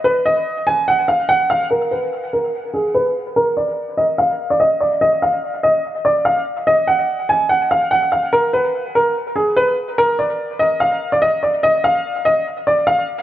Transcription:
\new Staff \with { instrumentName = "Upright piano" } { \time 4/4 \key ees \minor \tempo 4 = 145 ces''8 ees''4 aes''8 ges''8 f''8 ges''8 f''8 | bes'8 ces''4 bes'8 r8 aes'8 ces''8 r8 | bes'8 d''4 ees''8 f''8. d''16 ees''8 d''8 | ees''8 f''4 ees''8 r8 d''8 f''8 r8 |
ees''8 ges''4 aes''8 ges''8 f''8 ges''8 f''8 | bes'8 ces''4 bes'8 r8 aes'8 ces''8 r8 | bes'8 d''4 ees''8 f''8. d''16 ees''8 d''8 | ees''8 f''4 ees''8 r8 d''8 f''8 r8 | }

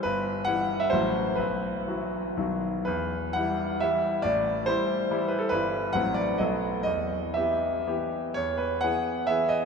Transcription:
<<
  \new Staff \with { instrumentName = "Grand piano" } { \time 3/4 \key e \minor \tempo 4 = 132 b'4 fis''8. e''16 c''4 | b'2~ b'8 r8 | b'4 fis''4 e''4 | d''4 c''4. b'16 a'16 |
b'4 fis''8 d''8 dis''4 | dis''4 e''4. r8 | \key e \major cis''8 b'8 fis''4 e''8 dis''8 | }
  \new Staff \with { instrumentName = "Grand piano" } { \clef bass \time 3/4 \key e \minor g,,4 <e g e'>4 <a,, e fis fis'>4 | b,,4 <e fis fis'>4 <b,, dis fis fis'>4 | e,4 <e g e'>4 <e g e'>4 | a,,4 <e g e'>4 <e g e'>4 |
<g,, e g e'>4 <a,, fis c' e'>4 <b,, fis b a'>4 | e,4 <e b g'>4 <e b g'>4 | \key e \major e,4 <e b gis'>4 <e b gis'>4 | }
>>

